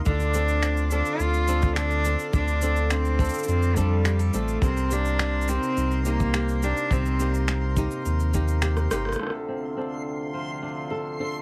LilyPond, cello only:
\new Staff \with { instrumentName = "Cello" } { \time 4/4 \key d \phrygian \tempo 4 = 105 d'4. d'8 f'4 d'4 | d'4 c'4 c'8 g4 a8 | c'8 d'4 c'4 bes4 d'8 | c'4 r2. |
r1 | }